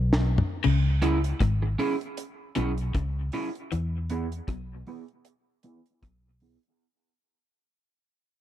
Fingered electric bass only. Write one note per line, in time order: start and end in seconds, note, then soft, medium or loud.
0.00 0.40 B1 medium
0.66 1.32 C#2 medium
1.41 1.75 G#1 medium
2.57 2.91 B1 medium
2.95 3.29 C#2 medium
3.73 4.40 E2 medium
4.49 4.82 B1 medium
6.03 6.56 B1 medium